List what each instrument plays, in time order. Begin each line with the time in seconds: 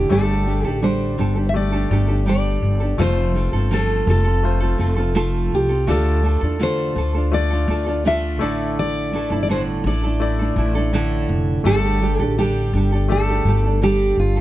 Already playing: nylon-string guitar D3 E4 A4, grand piano A3 E4 C5, steel-string acoustic guitar G4
0.09 upright bass G1, nylon-string guitar G3 D4 G4 A4, grand piano A3 G4 C#5, steel-string acoustic guitar A4
0.18 grand piano D5
0.46 nylon-string guitar G3 D4 G4 A4
0.64 upright bass A1, nylon-string guitar D4 G4 A4, steel-string acoustic guitar G4
0.82 nylon-string guitar G3 D4 G4 A4, steel-string acoustic guitar C5
1.18 upright bass G1, nylon-string guitar G3 D4 G4 A4
1.36 nylon-string guitar D4 G4 A4
1.49 steel-string acoustic guitar E5
1.54 grand piano A3 G4 D5, steel-string acoustic guitar D5
1.72 nylon-string guitar D4 G4 A4
1.90 upright bass G1, nylon-string guitar G3 D4 G4 A4
2.08 nylon-string guitar D4 G4 A4
2.26 nylon-string guitar G3 D4 G4 A4, steel-string acoustic guitar D5
2.62 upright bass G1
2.80 nylon-string guitar D4 G4 A4
2.98 upright bass F1, nylon-string guitar F3 A3 C4 F4 A4, grand piano A3 F4 C5, steel-string acoustic guitar C5
3.34 nylon-string guitar A3 C4 F4 A4
3.53 upright bass G1, nylon-string guitar C4 F4 A4
3.71 nylon-string guitar F3 A3 C4 F4 A4, steel-string acoustic guitar A4
4.07 upright bass F1, nylon-string guitar A3 C4 F4 A4, steel-string acoustic guitar A4
4.24 nylon-string guitar C4 F4 A4
4.43 grand piano A3 F4 C5
4.60 nylon-string guitar C4 F4 A4
4.78 upright bass F1, nylon-string guitar A3 C4 F4 A4
4.96 nylon-string guitar C4 F4 A4
5.15 nylon-string guitar F3 A3 C4 F4 A4
5.52 upright bass C2, steel-string acoustic guitar G4
5.69 nylon-string guitar C4 F4 A4
5.87 upright bass D2, nylon-string guitar D3 A3 D4 F4 A4, grand piano A3 F4 D5
5.91 steel-string acoustic guitar A4
6.23 nylon-string guitar A3 D4 F4 A4
6.41 upright bass E2, nylon-string guitar D4 F4 A4
6.59 nylon-string guitar D3 A3 D4 F4 A4, steel-string acoustic guitar C5
6.95 upright bass D2, nylon-string guitar A3 D4 F4 A4
7.14 nylon-string guitar D4 F4 A4
7.31 grand piano A3 F4 D5, steel-string acoustic guitar D5
7.50 nylon-string guitar D4 F4 A4
7.68 upright bass D2, nylon-string guitar A3 D4 F4 A4
7.86 nylon-string guitar D4 F4 A4
8.05 nylon-string guitar D3 A3 D4 F4 A4, steel-string acoustic guitar E5
8.39 upright bass A1, nylon-string guitar A2 D3 A3 D4 E4 A4, grand piano A3 E4 D5
8.79 steel-string acoustic guitar D5
9.13 nylon-string guitar A3 D4 E4 A4
9.30 upright bass G1, nylon-string guitar A3 D4 E4 A4
9.43 steel-string acoustic guitar D5
9.49 nylon-string guitar A2 D3 A3 D4 E4 A4, steel-string acoustic guitar C5
9.84 upright bass A1, nylon-string guitar A3 D4 E4 A4, steel-string acoustic guitar D5
10.04 nylon-string guitar A3 D4 E4 A4
10.20 grand piano A3 E4 D5
10.39 nylon-string guitar A3 D4 E4 A4
10.56 upright bass A1, nylon-string guitar A3 D4 E4 A4
10.75 nylon-string guitar A3 D4 E4 A4
10.93 nylon-string guitar A2 D3 A3 D4 E4 A4
11.29 upright bass F1
11.64 upright bass G1, nylon-string guitar G3 D4 G4 A4, grand piano A3 G4 D5, steel-string acoustic guitar A4
12.01 nylon-string guitar G3 D4 G4 A4
12.19 upright bass A1, nylon-string guitar D4 G4 A4, steel-string acoustic guitar G4
12.38 nylon-string guitar G3 D4 G4 A4, steel-string acoustic guitar G4
12.73 upright bass G1, nylon-string guitar G3 D4 G4 A4
12.92 nylon-string guitar D4 G4 A4
13.08 grand piano A3 G4 D5, steel-string acoustic guitar A4
13.29 nylon-string guitar D4 G4 A4
13.45 upright bass G1, nylon-string guitar G3 D4 G4 A4
13.64 nylon-string guitar D4 G4 A4
13.82 nylon-string guitar G3 D4 G4 A4, steel-string acoustic guitar G4
14.17 upright bass G1, steel-string acoustic guitar F4
14.36 nylon-string guitar G4 A4